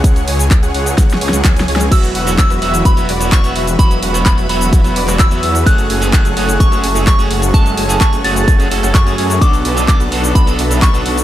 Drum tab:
CC |------------------------------------------------|x-----------------------------------------------|------------------------------------------------|------------------------------------------------|
HH |x--x--o--x--x--x--o--x--x--x--o--x--x--x--o--x--|x--x--o--x--x--x--o--x--x--x--o--x--x--x--o--x--|x--x--o--x--x--x--o--x--x--x--o--x--x--x--o--x--|x--x--o--x--x--x--o--x--x--x--o--x--x--x--o--x--|
SH |x--x-----x--x--x-----x--x--x-----x--x--x-----x--|x--x-----x--x--x-----x--x--x-----x--x--x-----x--|x--x-----x--x--x-----x--x--x-----x--x--x-----x--|x--x-----x--x--x-----x--x--x-----x--x--x-----x--|
CP |------------x-----------------------x-----------|------------x-----------------------x-----------|------------x--------------------x--x-----------|------------x-----------------------x-----------|
SD |------------------------o---o---o---o---o---o---|------------------------------------------------|------------------------------------------------|------------------------------------------------|
BD |o-----------o-----------o-----------o-----------|o-----------o-----------o-----------o-----------|o-----------o-----------o-----------o-----------|o-----------o-----------o-----------o-----------|

CC |------------------------------------------------|------------------------------------------------|
HH |x--x--o--x--x--x--o--x--x--x--o--x--x--x--o--x--|x--x--o--x--x--x--o--x--x--x--o--x--x--x--o--x--|
SH |x--x-----x--x--x-----x--x--x-----x--x--x-----x--|x--x-----x--x--x-----x--x--x-----x--x--x-----x--|
CP |------------x--------------------x--x-----------|------------x-----------------------x-----------|
SD |------------------------------------------------|------------------------------------------------|
BD |o-----------o-----------o-----------o-----------|o-----------o-----------o-----------o-----------|